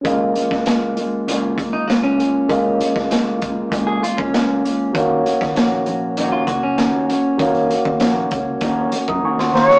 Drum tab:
HH |x-x-x-x-x-x-x-x-|x-x-x-x-x-x-x-x-|x-xxx-x-x-x-x-x-|xxx-x-x-x-x-----|
SD |---oo-------o---|---oo-------o---|---oo-------o---|----o--------ooo|
BD |o--o------o-----|o--o--o-o--o----|o--o------o-----|o--o--o-o--o----|